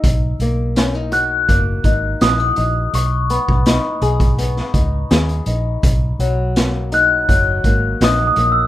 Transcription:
<<
  \new Staff \with { instrumentName = "Glockenspiel" } { \time 4/4 \key b \major \tempo 4 = 83 r4. fis'''4 r8 dis'''4 | cis'''8 b''2 r4. | r4. fis'''4. \tuplet 3/2 { dis'''8 dis'''8 e'''8 } | }
  \new Staff \with { instrumentName = "Nylon-string guitar" } { \time 4/4 \key b \major r8 ais8 cis'16 dis'16 fis'8 ais8 dis'8 e'16 fis'16 dis'8 | r8 b8 dis'8 gis'8 b8 dis'8 gis'8 dis'8 | r8 fis8 ais8 dis'8 fis8 ais8 dis'8 ais8 | }
  \new Staff \with { instrumentName = "Fingered electric bass" } { \clef bass \time 4/4 \key b \major b,,8 b,,4. fis,,8 gis,,8 ais,,8 ais,,8 | b,,8. b,,8 r16 b,,4 cis,8 dis,8 ais,,8 | b,,8 b,,4. fis,,8 gis,,8 ais,,8 ais,,8 | }
  \new DrumStaff \with { instrumentName = "Drums" } \drummode { \time 4/4 <hh bd>8 hh8 <hh sn>8 hh8 <hh bd>8 <hh bd>8 <hh sn>8 hh8 | hh8 hh16 bd16 <hh sn>8 hh16 <hh bd>16 hh16 sn16 <hh bd>8 <hh sn>16 hh16 hh8 | <hh bd>8 hh8 <hh sn>8 hh8 <hh bd>8 <hh bd>8 <hh sn>8 hh8 | }
>>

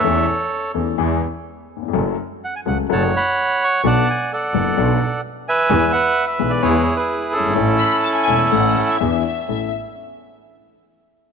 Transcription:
<<
  \new Staff \with { instrumentName = "Violin section" } { \time 4/4 \key a \major \tempo 4 = 127 r1 | r1 | r1 | r1 |
r8 b''8 a''16 gis''8. fis''8. e''4~ e''16 | e''8 r2. r8 | }
  \new Staff \with { instrumentName = "Bandoneon" } { \time 4/4 \key a \major << { e''8 r2. r8 | r4 fis''16 gis''16 fis''8 a''8 b''4 cis'''8 | a''8 gis''8 fis''2 r8 gis''8~ | gis''8 fis''8. e''8 d''16 cis''8. b'8. a'8~ |
a'2. r4 | r1 | } \\ { <a' cis''>4. r2 r8 | r2 <cis'' fis''>8 fis''4. | <d'' fis''>4 <a' d''>2 r8 <b' e''>8~ | <b' e''>8 b'4. <e' gis'>8. <e' gis'>8. <cis' e'>8~ |
<cis' e'>2. r4 | r1 | } >> }
  \new Staff \with { instrumentName = "Grand piano" } { \clef bass \time 4/4 \key a \major <e, e a cis' a'>8 r4 <e, e a cis' a'>8 <e, e gis b gis'>8 r4 r32 dis,32 e,32 f,32 | <fis, fis a cis' a'>8 r4 <cis, cis fis a cis' a'>8 <fis, fis a cis' a'>8 r4. | <b,, b, fis b d' a'>8 r4 <fis,, fis, fis b d' a'>8 <b,, b, fis b d' a'>8 r4. | <e, e gis b gis'>8 r4 <b,, b, e gis b gis'>8 <e, e gis b gis'>8 r4 r32 fis,,32 g,,32 gis,,32 |
<a,, a, e a cis' a'>8 r4 <e,, e, e a cis' a'>8 <a,, a, e a cis' a'>8 r8 <e, e b d' gis'>8 r8 | <a,, cis' e' a'>8 r2. r8 | }
  \new Staff \with { instrumentName = "Double bass" } { \clef bass \time 4/4 \key a \major e,8 r4 e,8 e,8 r4. | fis,,8 r4 cis,8 fis,,8 r4. | b,,8 r4 fis,,8 b,,8 r4. | e,8 r4 b,,8 e,8 r4 g,,8 |
a,,8 r4 e,,8 a,,8 r8 e,8 r8 | a,,8 r2. r8 | }
>>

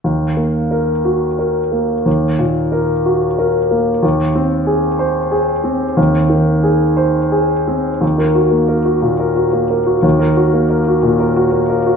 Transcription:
\new Staff \with { instrumentName = "Grand piano" } { \time 6/8 \key ees \dorian \tempo 4. = 60 ees,8 bes8 bes'8 ges'8 bes'8 bes8 | ees,8 bes,8 bes'8 ges'8 bes'8 bes8 | ees,8 c'8 aes'8 c''8 aes'8 c'8 | ees,8 ees8 aes'8 c''8 aes'8 c'8 |
ees,16 bes'16 ges'16 bes16 bes'16 ges'16 bes,16 bes'16 ges'16 bes16 bes'16 ges'16 | ees,16 bes'16 ges'16 bes16 bes'16 ges'16 bes,16 bes'16 ges'16 bes16 bes'16 ges'16 | }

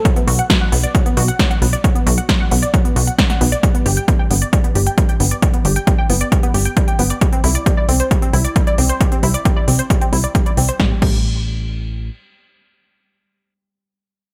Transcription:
<<
  \new Staff \with { instrumentName = "Synth pluck" } { \time 4/4 \key c \lydian \tempo 4 = 134 fis16 b16 fis'16 fis''16 fis16 fis''16 b16 d''16 fis16 b16 fis'16 fis''16 fis16 fis''16 b16 d''16 | fis16 b16 fis'16 fis''16 fis16 fis''16 b16 d''16 fis16 b16 fis'16 fis''16 fis16 fis''16 b16 d''16 | g16 b16 g'16 g''16 g16 g''16 b16 d''16 g16 b16 g'16 g''16 g16 g''16 b16 d''16 | g16 b16 g'16 g''16 g16 g''16 b16 d''16 g16 b16 g'16 g''16 g16 g''16 b16 d''16 |
g16 c'16 e'16 d''16 g16 d''16 c'16 c''16 g16 c'16 e'16 d''16 g16 d''16 c'16 c''16 | g16 c'16 e'16 d''16 g16 d''16 c'16 c''16 g16 c'16 e'16 d''16 g16 d''16 c'16 c''16 | g16 r16 g16 r2. r16 | r1 | }
  \new Staff \with { instrumentName = "Analog synth bass" } { \clef bass \time 4/4 \key c \lydian r8 b,,8 r8 b,,8 r8 b,,8 r8 b,,8 | r8 b,,8 r8 b,,8 r8 b,,8 r8 b,,8 | r8 g,,8 r8 g,,8 r8 g,,8 r8 g,,8 | r8 g,,8 r8 g,,8 r8 g,,8 r8 g,,8 |
r8 c,8 r8 c,8 r8 c,8 r8 c,8 | r8 c,8 r8 c,8 r8 c,8 r8 c,8 | a,,8 a,,2~ a,,8 r4 | r1 | }
  \new DrumStaff \with { instrumentName = "Drums" } \drummode { \time 4/4 <hh bd>16 hh16 hho16 hh16 <hh bd sn>8 hho16 hh16 <hh bd>16 hh16 hho16 hh16 <hh bd sn>16 hh16 hho16 hh16 | <hh bd>16 hh16 hho16 hh16 <hh bd sn>8 hho16 hh16 <hh bd>16 hh16 hho16 hh16 <hh bd sn>16 <hh sn>16 hho16 hh16 | <hh bd>16 hh16 hho16 hh16 <hh bd>8 hho16 hh16 <hh bd>16 hh16 hho16 hh16 <hh bd>16 hh16 hho16 hh16 | <hh bd>16 hh16 hho16 hh16 <hh bd>8 hho16 hh16 <hh bd>16 hh16 hho16 hh16 <hh bd>16 hh16 hho16 hh16 |
<hh bd>16 hh16 hho16 hh16 <hh bd>8 hho16 hh16 <hh bd>16 hh16 hho16 hh16 <hh bd>16 hh16 hho16 hh16 | <hh bd>16 hh16 hho16 hh16 <hh bd>8 hho16 hh16 <hh bd>16 hh16 hho16 hh16 <hh bd>16 hh16 hho16 hh16 | <bd sn>8 <cymc bd>8 r4 r4 r4 | r4 r4 r4 r4 | }
>>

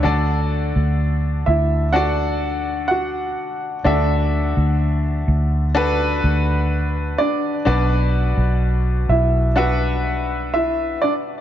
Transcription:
<<
  \new Staff \with { instrumentName = "Grand piano" } { \time 4/4 \key d \major \tempo 4 = 63 <d' d''>4. <e' e''>8 <fis' fis''>4 <fis' fis''>4 | <d' d''>2. r8 <d' d''>8~ | <d' d''>4. <e' e''>8 <fis' fis''>4 <e' e''>8 <d' d''>8 | }
  \new Staff \with { instrumentName = "Grand piano" } { \time 4/4 \key d \major <d' fis' a' d''>2 <d' fis' a' d''>2 | <d' fis' a' e''>2 <d' fis' a' b'>2 | <d' fis' b' d''>2 <d' fis' b' e''>2 | }
  \new Staff \with { instrumentName = "Grand piano" } { \clef bass \time 4/4 \key d \major d4. r2 r8 | d4. r2 r8 | b,4. r2 r8 | }
  \new Staff \with { instrumentName = "Fingered electric bass" } { \clef bass \time 4/4 \key d \major d,8. d,8. d,2 r8 | d,8. d,8. d,4 d,4 r8 | b,,8. b,,8. b,,2 r8 | }
>>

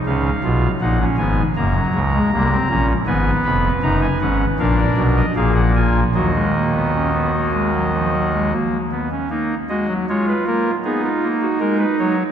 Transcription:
<<
  \new Staff \with { instrumentName = "Pipe organ" } { \time 4/4 \key fis \major \tempo 4 = 78 << { eis''4 fis''8 gis''8 ais''2 | \key ees \minor aes''8 ces'''8 bes''16 aes''16 ges''8 f''16 d''8 ees''16 f''16 ges''16 aes''8 | ees''2.~ ees''8 r8 | r8 ees''8 des''16 ces''16 bes'8 aes'16 f'8 ges'16 bes'16 ces''16 des''8 | } \\ { r1 | ces''2 bes'4 aes'8 f'8 | ges'2.~ ges'8 r8 | ees'8 ges'8 f'4 ees'2 | } >> }
  \new Staff \with { instrumentName = "Pipe organ" } { \clef bass \time 4/4 \key fis \major << { cis'8 eis'8 dis'16 cis'16 b8 ais16 fis8 gis16 ais16 bis16 cis'8 | \key ees \minor ces'4 ees'8 des'8 d'4 bes4 | ges16 aes16 bes16 ces'16 des'16 ces'16 bes16 aes16 ges16 f16 ges16 aes16 bes8 ces'16 des'16 | bes8 aes16 ges16 aes8 bes8 ces'8 bes8 aes8 ges8 | } \\ { <cis, cis>8 <b,, b,>8 <ais,, ais,>8 <gis,, gis,>8 <fis,, fis,>8 <cis, cis>8 <bis,, bis,>8 <ais,, ais,>8 | <aes,, aes,>8 <f,, f,>8 <ges,, ges,>8 <aes,, aes,>8 <bes,, bes,>8 <ces, ces>8 <bes,, bes,>4 | <ees, ees>2.~ <ees, ees>8 r8 | r1 | } >> }
>>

